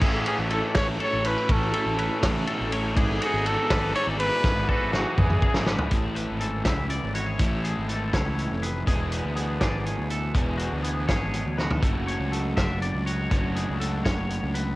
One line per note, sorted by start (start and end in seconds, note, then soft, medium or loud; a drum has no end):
0.01 0.24 A1 loud
0.01 0.98 A2 medium
0.01 0.49 E3 medium
0.01 0.26 C#4 medium
0.01 0.24 C#4 medium
0.01 0.26 E4 medium
0.01 0.25 E4 medium
0.01 0.26 G#4 medium
0.01 1.53 G#4 medium
0.01 0.26 A4 medium
0.01 0.25 C#5 medium
0.01 kick loud
0.01 crash loud
0.25 0.37 C#4 medium
0.25 0.50 C#4 medium
0.25 0.50 E4 medium
0.25 0.51 F#4 medium
0.25 0.38 G#4 medium
0.25 0.51 A4 medium
0.25 0.51 C#5 medium
0.25 ride medium
0.37 0.60 A1 medium
0.37 1.23 E4 medium
0.50 1.99 E3 medium
0.50 0.75 C#4 medium
0.50 0.75 E4 medium
0.50 0.76 A4 medium
0.50 0.75 A4 medium
0.50 0.63 A4 medium
0.50 0.74 C#5 medium
0.50 ride medium
0.75 0.97 A1 loud
0.75 0.98 C#4 medium
0.75 0.99 E4 medium
0.75 0.99 A4 medium
0.75 1.00 B4 medium
0.75 0.99 C#5 medium
0.75 0.88 C#5 loud
0.75 kick medium
0.75 snare loud
0.75 ride loud
0.99 1.46 A2 medium
0.99 1.24 C#4 medium
0.99 1.23 E4 medium
0.99 1.24 A4 medium
0.99 1.23 A4 medium
0.99 1.22 C#5 medium
0.99 ride medium
1.03 1.29 C#5 loud
1.13 1.35 A1 medium
1.23 1.38 C#4 medium
1.23 1.46 C#4 medium
1.23 1.47 E4 medium
1.23 1.47 A4 medium
1.23 1.74 B4 medium
1.23 1.54 B4 medium
1.23 1.47 C#5 medium
1.23 ride medium
1.38 1.49 E4 medium
1.47 1.71 A1 loud
1.47 2.72 A2 medium
1.47 1.73 C#4 medium
1.47 2.94 C#4 medium
1.47 1.73 E4 medium
1.47 1.73 A4 medium
1.47 1.73 C#5 medium
1.47 kick loud
1.47 ride loud
1.52 2.49 A4 medium
1.73 1.96 C#4 medium
1.73 1.97 E4 medium
1.73 3.26 E4 medium
1.73 1.98 A4 medium
1.73 1.97 A4 medium
1.73 1.98 C#5 medium
1.73 ride medium
1.86 2.08 A1 medium
1.98 3.46 E3 medium
1.98 2.21 C#4 medium
1.98 2.22 E4 medium
1.98 2.21 A4 medium
1.98 2.47 B4 medium
1.98 2.21 C#5 medium
1.98 ride medium
2.22 2.45 A1 loud
2.22 2.48 C#3 medium
2.22 2.46 C#4 medium
2.22 2.46 E4 medium
2.22 2.46 A4 medium
2.22 2.47 C#5 medium
2.22 kick medium
2.22 snare loud
2.22 ride loud
2.47 2.73 B2 medium
2.47 2.72 C#4 medium
2.47 2.71 E4 medium
2.47 2.72 A4 medium
2.47 2.71 A4 medium
2.47 2.71 C#5 medium
2.47 ride medium
2.60 2.97 A1 medium
2.72 2.97 A2 medium
2.72 2.95 C#4 medium
2.72 2.95 E4 medium
2.72 2.96 A4 medium
2.72 2.96 C#5 medium
2.72 ride medium
2.95 3.19 G#1 loud
2.95 3.93 G#2 medium
2.95 3.20 B3 medium
2.95 4.42 B3 medium
2.95 3.20 E4 medium
2.95 3.19 G#4 medium
2.95 3.21 G#4 medium
2.95 3.19 D5 loud
2.95 kick loud
2.95 ride loud
3.20 3.43 B3 medium
3.20 3.44 E4 medium
3.20 3.46 F#4 medium
3.20 4.69 F#4 medium
3.20 3.44 G#4 medium
3.20 3.44 D5 medium
3.20 ride medium
3.24 3.49 G#4 medium
3.34 3.55 G#1 medium
3.44 4.92 E3 medium
3.44 3.69 B3 medium
3.44 3.69 E4 medium
3.44 3.69 G#4 medium
3.44 3.70 A4 medium
3.44 3.95 A4 medium
3.44 3.69 D5 medium
3.44 ride medium
3.70 3.92 G#1 loud
3.70 3.93 B3 medium
3.70 3.94 E4 medium
3.70 3.94 G#4 medium
3.70 3.95 B4 medium
3.70 3.94 D5 medium
3.70 kick medium
3.70 snare loud
3.70 ride loud
3.94 4.40 G#2 medium
3.94 4.19 B3 medium
3.94 4.19 E4 medium
3.94 4.18 G#4 medium
3.94 4.19 A4 medium
3.94 4.06 C#5 loud
3.94 4.18 D5 medium
3.94 ride medium
4.07 4.29 G#1 medium
4.19 4.43 B3 medium
4.19 4.41 D4 medium
4.19 4.44 E4 medium
4.19 4.44 G#4 medium
4.19 4.68 B4 medium
4.19 4.65 B4 loud
4.19 4.44 D5 medium
4.19 ride medium
4.44 4.66 G#1 loud
4.44 5.42 G#2 medium
4.44 4.69 B3 medium
4.44 5.89 B3 medium
4.44 4.69 E4 medium
4.44 4.68 G#4 medium
4.44 4.68 D5 loud
4.44 kick loud
4.44 snare medium
4.69 4.92 B3 medium
4.69 4.93 E4 medium
4.69 5.92 F#4 medium
4.69 4.93 G#4 medium
4.69 4.93 A4 medium
4.69 4.92 B4 medium
4.69 4.93 D5 medium
4.69 kick medium
4.81 5.03 G#1 medium
4.93 6.38 E3 medium
4.93 5.17 B3 medium
4.93 5.17 E4 medium
4.93 5.20 F#4 medium
4.93 5.16 G#4 medium
4.93 5.42 B4 medium
4.93 5.16 D5 medium
4.93 snare medium
5.17 5.40 G#1 loud
5.17 5.40 B3 medium
5.17 5.41 E4 medium
5.17 5.41 G#4 medium
5.17 5.73 G#4 medium
5.17 5.42 D5 medium
5.17 kick medium
5.17 mid tom medium
5.30 mid tom medium
5.41 5.66 F#2 medium
5.41 5.66 B3 medium
5.41 5.67 E4 medium
5.41 5.67 G#4 medium
5.41 5.66 D5 medium
5.41 kick medium
5.54 5.77 G#1 medium
5.54 snare medium
5.67 5.91 G#2 medium
5.67 5.92 B3 medium
5.67 5.92 E4 medium
5.67 5.92 G#4 medium
5.67 5.91 B4 medium
5.67 5.92 D5 medium
5.67 snare loud
5.79 floor tom medium
5.91 6.25 A1 medium
5.91 6.90 A2 medium
5.91 7.37 A2 medium
5.91 7.39 E3 medium
5.91 7.38 A3 medium
5.91 7.38 C#4 medium
5.91 7.41 E4 medium
5.91 6.15 G#4 medium
5.91 7.39 A4 medium
5.91 kick loud
5.91 closed hi-hat medium
6.15 6.40 B4 medium
6.15 closed hi-hat medium
6.30 6.62 G#1 medium
6.40 7.87 E3 medium
6.40 6.65 A4 medium
6.40 closed hi-hat medium
6.65 6.99 C#2 medium
6.65 8.12 E4 medium
6.65 6.89 E5 medium
6.65 kick medium
6.65 snare loud
6.65 closed hi-hat medium
6.90 7.14 D5 medium
6.90 closed hi-hat medium
7.03 7.36 G#1 medium
7.14 7.26 F#4 medium
7.14 7.64 C#5 medium
7.14 closed hi-hat medium
7.26 7.39 G#4 soft
7.38 7.73 A1 medium
7.38 8.85 A2 medium
7.38 8.86 E3 medium
7.38 8.86 A3 medium
7.38 8.86 C#4 medium
7.38 8.89 E4 medium
7.38 8.87 A4 loud
7.38 kick loud
7.38 closed hi-hat medium
7.64 7.88 G#4 medium
7.64 closed hi-hat medium
7.77 8.10 G#1 medium
7.88 8.88 E3 medium
7.88 8.13 A4 medium
7.88 closed hi-hat medium
8.13 8.47 C#2 medium
8.13 11.62 E4 medium
8.13 8.63 C#5 medium
8.13 kick medium
8.13 snare loud
8.13 closed hi-hat medium
8.38 8.84 A2 medium
8.38 closed hi-hat medium
8.51 8.84 F1 medium
8.62 9.62 G#4 medium
8.62 8.87 B4 medium
8.62 closed hi-hat medium
8.86 9.20 E1 medium
8.86 10.33 E3 medium
8.86 10.34 E3 medium
8.86 10.34 B3 medium
8.86 10.36 D4 medium
8.86 9.12 G#4 medium
8.86 10.34 G#4 medium
8.86 kick loud
8.86 closed hi-hat medium
9.12 9.36 B4 medium
9.12 closed hi-hat medium
9.25 9.58 D2 medium
9.36 10.32 B3 medium
9.36 9.61 G#4 medium
9.36 closed hi-hat medium
9.60 9.94 G#1 medium
9.60 10.11 G#4 medium
9.60 9.85 D5 medium
9.60 kick medium
9.60 snare loud
9.60 closed hi-hat medium
9.85 10.35 B2 medium
9.85 10.09 C#5 medium
9.85 closed hi-hat medium
9.98 10.31 D2 medium
10.09 10.32 A4 medium
10.09 10.59 B4 medium
10.09 closed hi-hat medium
10.34 10.68 E1 medium
10.34 11.80 E3 medium
10.34 11.83 E3 medium
10.34 11.81 B3 medium
10.34 11.83 D4 medium
10.34 11.82 G#4 medium
10.34 kick loud
10.34 closed hi-hat medium
10.58 10.82 F#4 medium
10.58 closed hi-hat medium
10.72 11.05 D2 medium
10.83 11.80 B3 medium
10.83 11.08 G#4 medium
10.83 closed hi-hat medium
11.08 11.42 G#1 medium
11.08 11.58 G#4 medium
11.08 11.57 C#5 medium
11.08 kick medium
11.08 snare loud
11.08 closed hi-hat medium
11.33 11.83 B2 medium
11.33 closed hi-hat medium
11.45 11.79 D2 medium
11.58 11.71 F#4 medium
11.58 11.83 B4 medium
11.58 snare medium
11.71 11.83 A4 soft
11.71 floor tom medium
11.81 12.16 F#1 medium
11.81 12.80 F#2 medium
11.81 13.29 F#3 medium
11.81 13.29 A3 medium
11.81 13.31 D4 medium
11.81 13.32 F#4 medium
11.81 12.07 A4 medium
11.81 kick loud
11.81 closed hi-hat medium
12.07 12.32 C#5 medium
12.07 closed hi-hat medium
12.20 12.53 C#2 medium
12.31 13.80 F#3 medium
12.31 12.56 A4 medium
12.31 closed hi-hat medium
12.56 12.90 F#1 medium
12.56 14.76 D4 medium
12.56 12.81 E5 medium
12.56 kick medium
12.56 snare loud
12.56 closed hi-hat medium
12.81 13.30 F#2 medium
12.81 13.06 D5 medium
12.81 closed hi-hat medium
12.94 13.27 C#2 medium
13.06 14.76 F#4 medium
13.06 13.55 C#5 medium
13.06 closed hi-hat medium
13.29 13.64 F#1 medium
13.29 14.53 F#2 medium
13.29 14.76 F#3 medium
13.29 14.76 A3 medium
13.29 14.76 D4 medium
13.29 14.76 F#4 medium
13.29 kick loud
13.29 closed hi-hat medium
13.55 13.80 G#4 medium
13.55 closed hi-hat medium
13.69 14.02 C#2 medium
13.80 14.76 F#3 medium
13.80 14.05 A4 medium
13.80 closed hi-hat medium
14.04 14.39 F#1 medium
14.04 14.54 C#5 medium
14.04 kick medium
14.04 snare loud
14.04 closed hi-hat medium
14.30 closed hi-hat medium
14.43 14.76 C#2 medium
14.54 14.76 F#2 medium
14.54 14.76 B4 medium
14.54 closed hi-hat medium